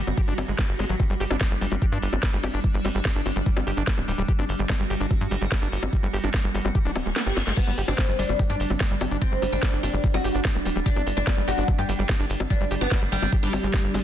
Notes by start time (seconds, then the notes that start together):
Already playing: G3 F#4
0.07 G1, closed hi-hat, high bongo
0.17 G4, kick, closed hi-hat
0.28 G1 D4, closed hi-hat
0.38 G1 G3, open hi-hat, high bongo
0.48 G1 G#3, closed hi-hat
0.59 G3, kick, snare, closed hi-hat
0.69 G1, closed hi-hat
0.79 G1 G#3, open hi-hat, high bongo
0.89 G#1 F#3, closed hi-hat
1.00 G3 D4, kick, closed hi-hat, high bongo
1.10 G1 G3, closed hi-hat
1.20 G1 G4, open hi-hat
1.31 G1 D4, high bongo
1.41 kick, snare, closed hi-hat
1.51 G1 G3, closed hi-hat
1.61 G1 G3, open hi-hat
1.72 G1 G3, closed hi-hat, high bongo
1.82 G4, kick, closed hi-hat
1.92 G2 D4, closed hi-hat
2.02 G1, open hi-hat
2.13 G1 G3, closed hi-hat, high bongo
2.23 G3, kick, snare, closed hi-hat
2.33 G1 G3, closed hi-hat
2.44 G1 G4, open hi-hat, high bongo
2.54 G1 D4, closed hi-hat
2.64 kick, closed hi-hat
2.74 G1 G3, closed hi-hat
2.85 G1 G3, open hi-hat, high bongo
2.95 G1 G3, closed hi-hat
3.05 G4, kick, snare, closed hi-hat
3.15 G1 D4, closed hi-hat
3.26 G1, open hi-hat, high bongo
3.36 G1 G3, closed hi-hat
3.46 G3, kick, closed hi-hat
3.57 G1 G3, closed hi-hat, high bongo
3.67 G1 G4, open hi-hat
3.77 G1 D4, closed hi-hat
3.87 kick, snare, closed hi-hat
3.98 D1 G3, closed hi-hat, high bongo
4.08 D1 G3, open hi-hat
4.18 D1 G3, closed hi-hat
4.28 F#4 G4, kick, closed hi-hat
4.39 G1 D4, closed hi-hat, high bongo
4.49 G1, open hi-hat
4.59 G1 G3, closed hi-hat
4.70 G3, kick, snare, closed hi-hat, high bongo
4.80 G1 G3, closed hi-hat
4.90 G1 G4, open hi-hat
5.00 G1 D4, closed hi-hat
5.11 kick, closed hi-hat, high bongo
5.21 G2 G3, closed hi-hat
5.31 G1 G3, open hi-hat
5.41 G1 G3, closed hi-hat
5.52 G4, kick, snare, closed hi-hat, high bongo
5.62 G1 D4, closed hi-hat
5.72 G1, open hi-hat
5.83 G1 G3, closed hi-hat, high bongo
5.93 G3, kick, closed hi-hat
6.03 G1 G3, closed hi-hat
6.13 G1 G4, open hi-hat
6.24 G1 D4, closed hi-hat, high bongo
6.34 kick, snare, closed hi-hat
6.44 G1 G3, closed hi-hat
6.55 G1 G3, open hi-hat
6.65 G1 G3, closed hi-hat, high bongo
6.75 G4, kick, closed hi-hat, reverse cymbal
6.85 D1 D4, closed hi-hat
6.96 D1 G3, open hi-hat, high bongo
7.06 D1 G#3, closed hi-hat
7.16 B3, snare, closed hi-hat
7.26 G1 G4, closed hi-hat
7.37 G1 G3, snare, open hi-hat, high bongo
7.47 G1 G#3, snare, closed hi-hat
7.57 G3 B3 D4, kick, closed hi-hat, crash, high bongo, shaker
7.67 G1 G3, closed hi-hat, shaker
7.78 G1 G4, open hi-hat, shaker
7.88 G1 C4 D4, closed hi-hat, high bongo, shaker
7.98 kick, snare, closed hi-hat, shaker
8.09 G1 G3, closed hi-hat, shaker
8.19 G1 G3 D4, open hi-hat, shaker
8.29 G1 G3, closed hi-hat, high bongo, shaker
8.39 G4, kick, closed hi-hat, shaker
8.50 G2 D4, closed hi-hat, shaker
8.60 G1, open hi-hat, shaker
8.70 G1 G3, closed hi-hat, high bongo, shaker
8.80 G3, kick, snare, closed hi-hat, shaker
8.91 G1 G3, closed hi-hat, shaker
9.00 G1 G4, open hi-hat, high bongo, shaker
9.11 G1 D4, closed hi-hat, shaker
9.22 C4, kick, closed hi-hat, shaker
9.31 G1 G3, closed hi-hat, shaker
9.42 G1 G3, open hi-hat, high bongo, shaker
9.52 G1 G3 D4, closed hi-hat, shaker
9.63 G4, kick, snare, closed hi-hat, shaker
9.73 G1 D4, closed hi-hat, shaker
9.83 G1 D4, open hi-hat, high bongo, shaker
9.94 G1 G3, closed hi-hat, shaker
10.04 G3, kick, closed hi-hat, shaker
10.14 G1 G3 F#4, closed hi-hat, high bongo, shaker
10.24 G1 G4, open hi-hat, shaker
10.35 G1 D4, closed hi-hat, shaker
10.45 kick, snare, closed hi-hat, shaker
10.55 D1 G3, closed hi-hat, high bongo, shaker
10.65 D1 G3, open hi-hat, shaker
10.76 D1 G3, closed hi-hat, shaker
10.86 D4 G4, kick, closed hi-hat, shaker
10.96 G1 D4, closed hi-hat, high bongo, shaker
11.07 G1, open hi-hat, shaker
11.17 G1 G3 D4, closed hi-hat, shaker
11.27 G3, kick, snare, closed hi-hat, high bongo, shaker
11.37 G1 G3, closed hi-hat, shaker
11.48 G1 F#4 G4, open hi-hat, shaker
11.57 G1 D4, closed hi-hat, shaker
11.68 kick, closed hi-hat, high bongo, shaker
11.78 G2 G3 G4, closed hi-hat, shaker
11.89 G1 G3, open hi-hat, shaker
11.99 G1 G3, closed hi-hat, shaker
12.09 G4, kick, snare, closed hi-hat, high bongo, shaker
12.20 G1 D4, closed hi-hat, shaker
12.30 G1, open hi-hat, shaker
12.40 G1 G3, closed hi-hat, high bongo, shaker
12.50 G3 D4, kick, closed hi-hat, shaker
12.61 G1 G3, closed hi-hat, shaker
12.71 G1 G4, open hi-hat, shaker
12.81 G1 B3 D4, closed hi-hat, high bongo, shaker
12.91 kick, snare, closed hi-hat, shaker
13.02 G1 G3, closed hi-hat, shaker
13.12 G1 G3, open hi-hat, shaker
13.22 G1 G3, closed hi-hat, high bongo, shaker
13.32 G4, kick, closed hi-hat, shaker
13.43 G1 G3 D4, closed hi-hat, shaker
13.53 G1 G3, open hi-hat, high bongo, shaker
13.63 G1 G#3, closed hi-hat, shaker
13.74 G3, kick, snare, closed hi-hat, shaker
13.83 G1, closed hi-hat, shaker
13.94 G1 G#3, open hi-hat, high bongo, shaker